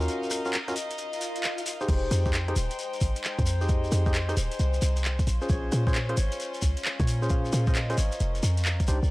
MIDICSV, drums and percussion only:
0, 0, Header, 1, 3, 480
1, 0, Start_track
1, 0, Tempo, 451128
1, 88, Time_signature, 4, 2, 24, 8
1, 9690, End_track
2, 0, Start_track
2, 0, Title_t, "Shekere"
2, 7, Note_on_c, 9, 82, 38
2, 95, Note_off_c, 9, 82, 0
2, 95, Note_on_c, 9, 82, 50
2, 201, Note_off_c, 9, 82, 0
2, 247, Note_on_c, 9, 82, 37
2, 325, Note_off_c, 9, 82, 0
2, 325, Note_on_c, 9, 82, 93
2, 431, Note_off_c, 9, 82, 0
2, 479, Note_on_c, 9, 82, 42
2, 567, Note_off_c, 9, 82, 0
2, 567, Note_on_c, 9, 82, 49
2, 674, Note_off_c, 9, 82, 0
2, 729, Note_on_c, 9, 82, 37
2, 811, Note_off_c, 9, 82, 0
2, 811, Note_on_c, 9, 82, 83
2, 917, Note_off_c, 9, 82, 0
2, 967, Note_on_c, 9, 82, 38
2, 1044, Note_off_c, 9, 82, 0
2, 1044, Note_on_c, 9, 82, 48
2, 1150, Note_off_c, 9, 82, 0
2, 1202, Note_on_c, 9, 82, 36
2, 1289, Note_off_c, 9, 82, 0
2, 1289, Note_on_c, 9, 82, 80
2, 1396, Note_off_c, 9, 82, 0
2, 1446, Note_on_c, 9, 82, 37
2, 1524, Note_off_c, 9, 82, 0
2, 1524, Note_on_c, 9, 82, 47
2, 1630, Note_off_c, 9, 82, 0
2, 1680, Note_on_c, 9, 82, 34
2, 1770, Note_off_c, 9, 82, 0
2, 1770, Note_on_c, 9, 82, 86
2, 1876, Note_off_c, 9, 82, 0
2, 1922, Note_on_c, 9, 82, 35
2, 2008, Note_off_c, 9, 82, 0
2, 2008, Note_on_c, 9, 82, 49
2, 2114, Note_off_c, 9, 82, 0
2, 2250, Note_on_c, 9, 82, 94
2, 2356, Note_off_c, 9, 82, 0
2, 2401, Note_on_c, 9, 82, 40
2, 2486, Note_off_c, 9, 82, 0
2, 2486, Note_on_c, 9, 82, 55
2, 2593, Note_off_c, 9, 82, 0
2, 2726, Note_on_c, 9, 82, 97
2, 2832, Note_off_c, 9, 82, 0
2, 2881, Note_on_c, 9, 82, 36
2, 2972, Note_off_c, 9, 82, 0
2, 2972, Note_on_c, 9, 82, 50
2, 3078, Note_off_c, 9, 82, 0
2, 3125, Note_on_c, 9, 82, 34
2, 3200, Note_off_c, 9, 82, 0
2, 3200, Note_on_c, 9, 82, 90
2, 3306, Note_off_c, 9, 82, 0
2, 3360, Note_on_c, 9, 82, 38
2, 3450, Note_off_c, 9, 82, 0
2, 3450, Note_on_c, 9, 82, 49
2, 3557, Note_off_c, 9, 82, 0
2, 3605, Note_on_c, 9, 82, 36
2, 3683, Note_off_c, 9, 82, 0
2, 3683, Note_on_c, 9, 82, 98
2, 3790, Note_off_c, 9, 82, 0
2, 3843, Note_on_c, 9, 82, 42
2, 3919, Note_off_c, 9, 82, 0
2, 3919, Note_on_c, 9, 82, 55
2, 4026, Note_off_c, 9, 82, 0
2, 4084, Note_on_c, 9, 82, 39
2, 4167, Note_off_c, 9, 82, 0
2, 4167, Note_on_c, 9, 82, 92
2, 4273, Note_off_c, 9, 82, 0
2, 4319, Note_on_c, 9, 82, 40
2, 4407, Note_off_c, 9, 82, 0
2, 4407, Note_on_c, 9, 82, 51
2, 4514, Note_off_c, 9, 82, 0
2, 4564, Note_on_c, 9, 82, 38
2, 4651, Note_off_c, 9, 82, 0
2, 4651, Note_on_c, 9, 82, 88
2, 4757, Note_off_c, 9, 82, 0
2, 4810, Note_on_c, 9, 82, 38
2, 4889, Note_off_c, 9, 82, 0
2, 4889, Note_on_c, 9, 82, 59
2, 4995, Note_off_c, 9, 82, 0
2, 5039, Note_on_c, 9, 82, 39
2, 5126, Note_off_c, 9, 82, 0
2, 5126, Note_on_c, 9, 82, 90
2, 5232, Note_off_c, 9, 82, 0
2, 5283, Note_on_c, 9, 82, 41
2, 5366, Note_off_c, 9, 82, 0
2, 5366, Note_on_c, 9, 82, 48
2, 5472, Note_off_c, 9, 82, 0
2, 5526, Note_on_c, 9, 82, 40
2, 5610, Note_off_c, 9, 82, 0
2, 5610, Note_on_c, 9, 82, 100
2, 5717, Note_off_c, 9, 82, 0
2, 5761, Note_on_c, 9, 82, 37
2, 5842, Note_off_c, 9, 82, 0
2, 5842, Note_on_c, 9, 82, 49
2, 5949, Note_off_c, 9, 82, 0
2, 6087, Note_on_c, 9, 82, 99
2, 6193, Note_off_c, 9, 82, 0
2, 6253, Note_on_c, 9, 82, 41
2, 6330, Note_off_c, 9, 82, 0
2, 6330, Note_on_c, 9, 82, 52
2, 6436, Note_off_c, 9, 82, 0
2, 6565, Note_on_c, 9, 82, 93
2, 6671, Note_off_c, 9, 82, 0
2, 6725, Note_on_c, 9, 82, 39
2, 6817, Note_off_c, 9, 82, 0
2, 6817, Note_on_c, 9, 82, 58
2, 6924, Note_off_c, 9, 82, 0
2, 6959, Note_on_c, 9, 82, 35
2, 7041, Note_off_c, 9, 82, 0
2, 7041, Note_on_c, 9, 82, 101
2, 7148, Note_off_c, 9, 82, 0
2, 7215, Note_on_c, 9, 82, 36
2, 7291, Note_off_c, 9, 82, 0
2, 7291, Note_on_c, 9, 82, 52
2, 7397, Note_off_c, 9, 82, 0
2, 7445, Note_on_c, 9, 82, 40
2, 7532, Note_off_c, 9, 82, 0
2, 7532, Note_on_c, 9, 82, 92
2, 7638, Note_off_c, 9, 82, 0
2, 7685, Note_on_c, 9, 82, 41
2, 7761, Note_off_c, 9, 82, 0
2, 7761, Note_on_c, 9, 82, 54
2, 7868, Note_off_c, 9, 82, 0
2, 7928, Note_on_c, 9, 82, 38
2, 8006, Note_off_c, 9, 82, 0
2, 8006, Note_on_c, 9, 82, 91
2, 8112, Note_off_c, 9, 82, 0
2, 8162, Note_on_c, 9, 82, 44
2, 8243, Note_off_c, 9, 82, 0
2, 8243, Note_on_c, 9, 82, 55
2, 8349, Note_off_c, 9, 82, 0
2, 8411, Note_on_c, 9, 82, 36
2, 8486, Note_off_c, 9, 82, 0
2, 8486, Note_on_c, 9, 82, 95
2, 8593, Note_off_c, 9, 82, 0
2, 8638, Note_on_c, 9, 82, 41
2, 8724, Note_off_c, 9, 82, 0
2, 8724, Note_on_c, 9, 82, 49
2, 8830, Note_off_c, 9, 82, 0
2, 8888, Note_on_c, 9, 82, 35
2, 8968, Note_off_c, 9, 82, 0
2, 8968, Note_on_c, 9, 82, 98
2, 9075, Note_off_c, 9, 82, 0
2, 9126, Note_on_c, 9, 82, 38
2, 9206, Note_off_c, 9, 82, 0
2, 9206, Note_on_c, 9, 82, 51
2, 9313, Note_off_c, 9, 82, 0
2, 9366, Note_on_c, 9, 82, 41
2, 9441, Note_off_c, 9, 82, 0
2, 9441, Note_on_c, 9, 82, 96
2, 9547, Note_off_c, 9, 82, 0
2, 9610, Note_on_c, 9, 82, 38
2, 9690, Note_off_c, 9, 82, 0
2, 9690, End_track
3, 0, Start_track
3, 0, Title_t, "Drums"
3, 88, Note_on_c, 9, 42, 65
3, 195, Note_off_c, 9, 42, 0
3, 330, Note_on_c, 9, 37, 60
3, 330, Note_on_c, 9, 46, 117
3, 436, Note_off_c, 9, 37, 0
3, 436, Note_off_c, 9, 46, 0
3, 568, Note_on_c, 9, 39, 119
3, 568, Note_on_c, 9, 42, 72
3, 675, Note_off_c, 9, 39, 0
3, 675, Note_off_c, 9, 42, 0
3, 724, Note_on_c, 9, 37, 59
3, 724, Note_on_c, 9, 42, 39
3, 807, Note_on_c, 9, 46, 114
3, 830, Note_off_c, 9, 37, 0
3, 830, Note_off_c, 9, 42, 0
3, 914, Note_off_c, 9, 46, 0
3, 964, Note_on_c, 9, 42, 72
3, 1048, Note_off_c, 9, 42, 0
3, 1048, Note_on_c, 9, 42, 63
3, 1154, Note_off_c, 9, 42, 0
3, 1204, Note_on_c, 9, 42, 38
3, 1288, Note_on_c, 9, 46, 102
3, 1311, Note_off_c, 9, 42, 0
3, 1394, Note_off_c, 9, 46, 0
3, 1444, Note_on_c, 9, 42, 66
3, 1527, Note_on_c, 9, 39, 113
3, 1551, Note_off_c, 9, 42, 0
3, 1634, Note_off_c, 9, 39, 0
3, 1684, Note_on_c, 9, 42, 57
3, 1767, Note_on_c, 9, 46, 111
3, 1790, Note_off_c, 9, 42, 0
3, 1873, Note_off_c, 9, 46, 0
3, 2006, Note_on_c, 9, 42, 60
3, 2006, Note_on_c, 9, 49, 74
3, 2008, Note_on_c, 9, 36, 127
3, 2113, Note_off_c, 9, 42, 0
3, 2113, Note_off_c, 9, 49, 0
3, 2114, Note_off_c, 9, 36, 0
3, 2247, Note_on_c, 9, 37, 61
3, 2247, Note_on_c, 9, 46, 111
3, 2353, Note_off_c, 9, 37, 0
3, 2353, Note_off_c, 9, 46, 0
3, 2403, Note_on_c, 9, 36, 110
3, 2486, Note_on_c, 9, 39, 120
3, 2486, Note_on_c, 9, 42, 64
3, 2510, Note_off_c, 9, 36, 0
3, 2592, Note_off_c, 9, 39, 0
3, 2592, Note_off_c, 9, 42, 0
3, 2642, Note_on_c, 9, 37, 60
3, 2642, Note_on_c, 9, 42, 39
3, 2726, Note_on_c, 9, 46, 112
3, 2749, Note_off_c, 9, 37, 0
3, 2749, Note_off_c, 9, 42, 0
3, 2832, Note_off_c, 9, 46, 0
3, 2882, Note_on_c, 9, 42, 71
3, 2966, Note_off_c, 9, 42, 0
3, 2966, Note_on_c, 9, 42, 64
3, 3073, Note_off_c, 9, 42, 0
3, 3122, Note_on_c, 9, 42, 35
3, 3207, Note_on_c, 9, 36, 60
3, 3208, Note_on_c, 9, 46, 102
3, 3228, Note_off_c, 9, 42, 0
3, 3313, Note_off_c, 9, 36, 0
3, 3314, Note_off_c, 9, 46, 0
3, 3364, Note_on_c, 9, 42, 63
3, 3449, Note_on_c, 9, 39, 113
3, 3470, Note_off_c, 9, 42, 0
3, 3555, Note_off_c, 9, 39, 0
3, 3603, Note_on_c, 9, 36, 108
3, 3604, Note_on_c, 9, 42, 52
3, 3688, Note_on_c, 9, 46, 107
3, 3709, Note_off_c, 9, 36, 0
3, 3711, Note_off_c, 9, 42, 0
3, 3795, Note_off_c, 9, 46, 0
3, 3927, Note_on_c, 9, 36, 127
3, 3928, Note_on_c, 9, 42, 61
3, 4034, Note_off_c, 9, 36, 0
3, 4035, Note_off_c, 9, 42, 0
3, 4169, Note_on_c, 9, 37, 60
3, 4169, Note_on_c, 9, 46, 111
3, 4276, Note_off_c, 9, 37, 0
3, 4276, Note_off_c, 9, 46, 0
3, 4323, Note_on_c, 9, 36, 112
3, 4409, Note_on_c, 9, 39, 117
3, 4409, Note_on_c, 9, 42, 66
3, 4429, Note_off_c, 9, 36, 0
3, 4515, Note_off_c, 9, 39, 0
3, 4515, Note_off_c, 9, 42, 0
3, 4565, Note_on_c, 9, 37, 59
3, 4565, Note_on_c, 9, 42, 36
3, 4648, Note_on_c, 9, 46, 111
3, 4672, Note_off_c, 9, 37, 0
3, 4672, Note_off_c, 9, 42, 0
3, 4755, Note_off_c, 9, 46, 0
3, 4804, Note_on_c, 9, 42, 64
3, 4888, Note_off_c, 9, 42, 0
3, 4888, Note_on_c, 9, 42, 59
3, 4995, Note_off_c, 9, 42, 0
3, 5044, Note_on_c, 9, 42, 35
3, 5129, Note_on_c, 9, 46, 108
3, 5151, Note_off_c, 9, 42, 0
3, 5236, Note_off_c, 9, 46, 0
3, 5285, Note_on_c, 9, 42, 60
3, 5369, Note_on_c, 9, 39, 121
3, 5391, Note_off_c, 9, 42, 0
3, 5475, Note_off_c, 9, 39, 0
3, 5523, Note_on_c, 9, 36, 112
3, 5525, Note_on_c, 9, 42, 52
3, 5606, Note_on_c, 9, 46, 105
3, 5630, Note_off_c, 9, 36, 0
3, 5631, Note_off_c, 9, 42, 0
3, 5713, Note_off_c, 9, 46, 0
3, 5848, Note_on_c, 9, 36, 127
3, 5848, Note_on_c, 9, 42, 63
3, 5954, Note_off_c, 9, 36, 0
3, 5954, Note_off_c, 9, 42, 0
3, 6086, Note_on_c, 9, 37, 59
3, 6086, Note_on_c, 9, 46, 105
3, 6193, Note_off_c, 9, 37, 0
3, 6193, Note_off_c, 9, 46, 0
3, 6244, Note_on_c, 9, 36, 114
3, 6327, Note_on_c, 9, 39, 123
3, 6327, Note_on_c, 9, 42, 65
3, 6350, Note_off_c, 9, 36, 0
3, 6434, Note_off_c, 9, 39, 0
3, 6434, Note_off_c, 9, 42, 0
3, 6482, Note_on_c, 9, 37, 59
3, 6482, Note_on_c, 9, 42, 35
3, 6566, Note_on_c, 9, 46, 107
3, 6588, Note_off_c, 9, 37, 0
3, 6588, Note_off_c, 9, 42, 0
3, 6672, Note_off_c, 9, 46, 0
3, 6723, Note_on_c, 9, 42, 62
3, 6807, Note_off_c, 9, 42, 0
3, 6807, Note_on_c, 9, 42, 57
3, 6913, Note_off_c, 9, 42, 0
3, 6963, Note_on_c, 9, 42, 35
3, 7047, Note_on_c, 9, 46, 98
3, 7048, Note_on_c, 9, 36, 62
3, 7070, Note_off_c, 9, 42, 0
3, 7153, Note_off_c, 9, 46, 0
3, 7155, Note_off_c, 9, 36, 0
3, 7203, Note_on_c, 9, 42, 61
3, 7288, Note_on_c, 9, 39, 122
3, 7309, Note_off_c, 9, 42, 0
3, 7394, Note_off_c, 9, 39, 0
3, 7444, Note_on_c, 9, 36, 111
3, 7444, Note_on_c, 9, 42, 51
3, 7526, Note_on_c, 9, 46, 106
3, 7551, Note_off_c, 9, 36, 0
3, 7551, Note_off_c, 9, 42, 0
3, 7633, Note_off_c, 9, 46, 0
3, 7768, Note_on_c, 9, 42, 59
3, 7769, Note_on_c, 9, 36, 127
3, 7874, Note_off_c, 9, 42, 0
3, 7875, Note_off_c, 9, 36, 0
3, 8008, Note_on_c, 9, 37, 54
3, 8008, Note_on_c, 9, 46, 100
3, 8114, Note_off_c, 9, 37, 0
3, 8114, Note_off_c, 9, 46, 0
3, 8164, Note_on_c, 9, 36, 121
3, 8248, Note_on_c, 9, 39, 126
3, 8248, Note_on_c, 9, 42, 64
3, 8271, Note_off_c, 9, 36, 0
3, 8355, Note_off_c, 9, 39, 0
3, 8355, Note_off_c, 9, 42, 0
3, 8404, Note_on_c, 9, 37, 54
3, 8404, Note_on_c, 9, 42, 37
3, 8487, Note_on_c, 9, 46, 103
3, 8510, Note_off_c, 9, 37, 0
3, 8510, Note_off_c, 9, 42, 0
3, 8594, Note_off_c, 9, 46, 0
3, 8643, Note_on_c, 9, 42, 67
3, 8727, Note_off_c, 9, 42, 0
3, 8727, Note_on_c, 9, 42, 64
3, 8834, Note_off_c, 9, 42, 0
3, 8883, Note_on_c, 9, 42, 36
3, 8966, Note_on_c, 9, 46, 98
3, 8990, Note_off_c, 9, 42, 0
3, 9073, Note_off_c, 9, 46, 0
3, 9122, Note_on_c, 9, 42, 63
3, 9205, Note_on_c, 9, 39, 122
3, 9229, Note_off_c, 9, 42, 0
3, 9312, Note_off_c, 9, 39, 0
3, 9362, Note_on_c, 9, 42, 50
3, 9364, Note_on_c, 9, 36, 111
3, 9447, Note_on_c, 9, 46, 99
3, 9469, Note_off_c, 9, 42, 0
3, 9470, Note_off_c, 9, 36, 0
3, 9553, Note_off_c, 9, 46, 0
3, 9690, End_track
0, 0, End_of_file